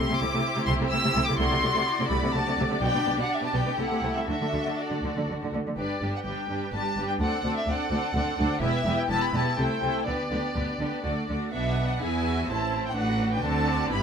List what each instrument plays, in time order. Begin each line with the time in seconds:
Already playing: viola section E4, violin section G4 C5 C6
0.09 cello section C3, viola section A3
0.19 double bass section C2, cello section C3, viola section A3, violin section D6
0.33 cello section C3, viola section A3
0.57 cello section C3, viola section A3
0.66 double bass section C2, cello section C3, viola section A3, violin section C6
0.80 cello section C3, viola section A3
0.90 double bass section C2, cello section C3, viola section A3, violin section E6
1.04 cello section C3, viola section A3
1.15 double bass section C2, cello section C3, viola section A3
1.27 cello section C3, viola section A3, violin section D6
1.38 double bass section C2, cello section C3, viola section A3, violin section F#4 D5 C6
1.49 cello section C3, viola section A3
1.61 double bass section C2, cello section C3, viola section A3
1.73 cello section C3, viola section A3
1.99 cello section C3, viola section A3
2.10 double bass section C2, cello section C3, viola section A3, violin section B5
2.22 cello section C3, viola section A3
2.34 double bass section C2, cello section C3, viola section A3 D4, violin section A5
2.46 cello section C3, viola section A3
2.57 double bass section C2, cello section C3, viola section A3
2.70 cello section C3, viola section A3
2.81 double bass section B1, cello section B2, viola section B3, violin section G4 G5
2.94 cello section B2, viola section B3
3.05 double bass section B1, cello section B2, viola section B3
3.17 cello section B2, viola section B3, violin section F#5
3.32 violin section E5
3.41 cello section B2, viola section B3, violin section A5
3.53 double bass section B1, cello section B2, viola section B3, violin section G5
3.66 cello section B2, viola section B3
3.78 double bass section C2, cello section C3, viola section A3 E4, violin section A4 F#5
3.91 cello section C3, viola section A3
4.02 double bass section C2, cello section C3, viola section A3
4.15 cello section C3, viola section A3, violin section E5
4.28 double bass section D2, cello section D3, viola section A3 D4, violin section F#4 E5
4.41 cello section D3, viola section A3
4.53 double bass section D2, cello section D3, viola section A3
4.66 cello section D3, viola section A3
4.78 violin section D5
4.90 cello section D3, viola section A3
5.03 double bass section D2, cello section D3, viola section A3
5.16 cello section D3, viola section A3
5.28 double bass section D2, cello section D3, viola section A3
5.41 cello section D3, viola section A3
5.52 double bass section D2, cello section D3, viola section A3
5.65 cello section D3, viola section A3
5.77 double bass section G1, cello section G2, viola section G3 D4, violin section G4 B4 D5
6.01 double bass section G1, cello section G2, viola section G3 D4, violin section G4 B4
6.15 violin section F#5
6.24 double bass section G1, cello section G2, viola section G3 D4, violin section G4 B4 G5
6.48 double bass section G1, cello section G2, viola section G3 D4, violin section G4 B4
6.71 double bass section G1, cello section G2, viola section G3 D4, violin section G4 B4 A5
6.95 double bass section G1, cello section G2, viola section G3 D4, violin section G4 B4
7.08 violin section G5
7.20 double bass section D2, cello section D2, viola section C4 D4, violin section A4 D5 F#5
7.44 double bass section D2, cello section D2, viola section C4 D4, violin section A4 D5
7.57 violin section E5
7.67 cello section D2, double bass section D2, viola section C4 D4, violin section A4 D5 F#5
7.91 double bass section D2, cello section D2, viola section C4 D4, violin section A4 D5
8.14 double bass section D2, cello section D2, viola section C4 D4, violin section A4 D5
8.37 double bass section D2, cello section D2, viola section C4 D4, violin section A4 D5
8.61 double bass section E1, cello section E2, viola section B3 E4, violin section G4 B4 E5
8.85 double bass section E1, cello section E2, viola section B3 E4, violin section G4 B4
8.98 violin section G5
9.09 double bass section E1, cello section E2, viola section B3 E4, violin section G4 B4 A5
9.23 violin section B5
9.33 double bass section E1, cello section E2, viola section B3 E4, violin section G4 B4 A5
9.58 double bass section C2, cello section C3, viola section A3 E4, violin section A4 C5 G5
9.82 double bass section C2, cello section C3, viola section A3 E4, violin section A4 C5
10.06 double bass section D2, cello section D3, viola section B3 D4, violin section G4 B4 D5
10.30 double bass section D2, cello section D3, viola section B3 D4, violin section G4 B4
10.55 double bass section D2, cello section D3, viola section B3 D4, violin section G4 B4
10.79 double bass section D2, cello section D3, viola section B3 D4, violin section G4 B4
11.04 double bass section D2, cello section D3, viola section A3 D4, violin section F#4 D5
11.28 double bass section D2, cello section D3, viola section A3 D4, violin section F#4 D5
11.52 double bass section B1, cello section B2, viola section B3 D4, violin section B4 E5 F#5
11.90 violin section F#5
12.01 double bass section E2, cello section E3, viola section B3 E4, violin section G#4 E5 G#5
12.25 violin section F#4
12.48 double bass section A1, cello section A2, viola section C4 E4, violin section E4 C5 A5
12.86 violin section G5
12.95 double bass section A1, cello section A2, viola section D4, violin section F#4 B4 F#5
13.33 violin section G5
13.43 double bass section D2, cello section D3, viola section C4, violin section F#4 A4 A5
13.66 violin section D5
13.90 double bass section G1, cello section G2, viola section B3 E4, violin section G4 B4 B5